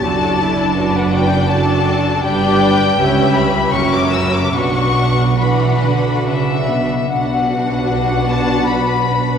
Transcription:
<<
  \new Staff \with { instrumentName = "Violin section" } { \time 3/4 \key d \major \tempo 4 = 79 a''4~ a''16 fis''16 g''8 a''4 | \key b \minor g''4. b''8 cis'''16 d'''16 e'''16 d'''16 | cis'''4 b''4 e''4 | fis''4. a''8 b''4 | }
  \new Staff \with { instrumentName = "Violin section" } { \time 3/4 \key d \major <a' d''>4 <b' d''>4 <a' d''>4 | \key b \minor <b' d''>4 <b' e''>4 <ais' e''>4 | <b' fis''>4 <b' fis''>4.~ <b' fis''>16 r16 | <b' fis''>2. | }
  \new Staff \with { instrumentName = "Viola section" } { \time 3/4 \key d \major << { fis'8 e'8 fis'4 fis'4 | \key b \minor g'4 g'4 fis'4 | fis'4 fis'4.~ fis'16 r16 | fis'2. | } \\ { d'2 d'4 | d'4 cis'4 cis'4 | d'4 d'4.~ d'16 r16 | d'2. | } >> }
  \new Staff \with { instrumentName = "Cello section" } { \clef bass \time 3/4 \key d \major fis,2. | \key b \minor g,4 cis,4 fis,4 | b,4 e8 d8 cis8 b,8 | b,2. | }
  \new Staff \with { instrumentName = "Double bass section" } { \clef bass \time 3/4 \key d \major fis,,2. | \key b \minor g,,4 cis,4 fis,,4 | b,,2~ b,,8. r16 | b,,2. | }
>>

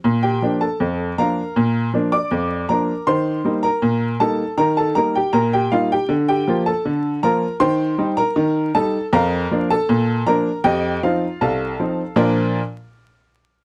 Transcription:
<<
  \new Staff \with { instrumentName = "Upright piano" } { \time 2/4 \key bes \major \tempo 4 = 79 r16 <g' g''>8 <a' a''>8. <bes' f'' bes''>8~ | <bes' f'' bes''>8. <d'' d'''>8. <bes' bes''>8 | <c'' c'''>8. <bes' bes''>8. <a' a''>8 | <bes' bes''>16 <a' a''>16 <bes' bes''>16 <g' g''>16 <bes' bes''>16 <g' g''>16 <f' f''>16 <g' g''>16 |
r16 <g' g''>8 <a' a''>8. <bes' bes''>8 | <c'' g'' c'''>8. <bes' bes''>8. <a' a''>8 | <bes' f'' bes''>8. <a' a''>8. <bes' bes''>8 | <g' ees'' g''>8 <f' f''>8 <a' f'' a''>4 |
<bes, f d' f' bes' d'' bes''>8 r4. | }
  \new Staff \with { instrumentName = "Upright piano" } { \clef bass \time 2/4 \key bes \major bes,8 <f bes d'>8 f,8 <f bes d'>8 | bes,8 <f bes d'>8 f,8 <f bes d'>8 | ees8 <g bes ees'>8 bes,8 <g bes ees'>8 | ees8 <g bes ees'>8 bes,8 <g bes ees'>8 |
d8 <f bes f'>8 d8 <f bes f'>8 | ees8 <g ees'>8 ees8 <g ees'>8 | f,8 <f bes d'>8 bes,8 <f bes d'>8 | f,8 <f c' ees'>8 c,8 <f c' ees'>8 |
r2 | }
>>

